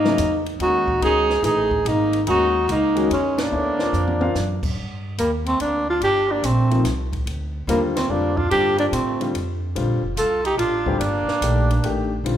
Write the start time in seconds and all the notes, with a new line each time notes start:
Already playing: G#2 A#3 D#4
0.05 C#3 F#3 A#3 E4, snare
0.18 E2, hi-hat pedal, ride
0.46 ride
0.59 D#2 D#3 G#3 C#4 D#4 F#4, ride
0.88 kick
1.01 C#2 D#3 G#3 C#4 D#4 F#4 G#4, ride
1.30 snare
1.43 A1 E3 A3 D#4 G#4, hi-hat pedal, ride
1.71 kick
1.85 G#1 A#3 D#4, ride
2.13 ride
2.27 D#2 D#3 G#3 C#4 D#4 F#4, ride
2.68 C#2 A#3 D#4, hi-hat pedal, ride
2.95 D#3 G#3 C#4 F#4, ride
3.10 E2 G#3 C#4, ride
3.38 A#3 D4, snare, ride
3.51 D2 B3 E4 A4 C#5
3.79 C4 F4 A#4 D5, snare
3.93 F2, hi-hat pedal
4.07 mid tom
4.20 C4 F4 A#4 F5, mid tom
4.35 F#2, snare, hi-hat pedal
4.63 kick, crash
4.77 G2
5.18 D#2 G3 A#3, hi-hat pedal, ride
5.46 A3 C4, ride
5.60 D2 A#3 D4, ride
5.90 D4 F4
6.01 G1 D4 G4, ride
6.32 A#3 D4
6.43 A#1 A3 C4, hi-hat pedal, ride
6.71 C3 F3 A#3 D#4, ride
6.84 C2, snare, hi-hat pedal, ride
7.13 kick, ride
7.26 D2, ride
7.67 D#2 D3 G3 A#3 C4 F4, hi-hat pedal, ride
7.94 A3 C4, snare, ride
8.07 F2 D3 G3 A#3 C4 D4
8.12 F4
8.35 D4 F4, kick
8.49 G2 D3 G3 C4 D4 F4 G4, ride
8.77 A#3 D4, ride
8.91 A2 A3 C4, hi-hat pedal, ride
9.20 D3 G3 C4 F4, ride
9.34 F2, ride
9.75 A#1 D3 G3 C4 F4, ride
9.89 G1
10.03 F1
10.17 C2 F4 A4, hi-hat pedal, ride
10.44 D#4 G4, ride
10.57 A1 D4 F4, ride
10.86 D3 G3 C4 G4, kick
10.98 G1 A#3 D4, ride
11.27 muted upright bass stroke, snare
11.41 A#1 D#3 A3 D4 G4, hi-hat pedal, ride
11.71 ride
11.83 A1 D#3 A3 D4 G4, ride
12.24 A#1 D3 G3 C4 F4, ride